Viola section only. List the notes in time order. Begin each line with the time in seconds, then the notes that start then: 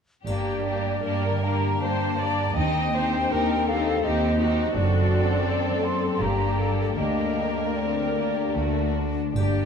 0.26 G4
1.05 A#4
1.81 C5
2.19 D5
2.56 D#5
2.94 C5
3.31 A#4
3.68 A4
4.04 G4
4.41 F#4
5.47 A4
6.20 G4
6.58 A4
6.97 A#4
9.36 G4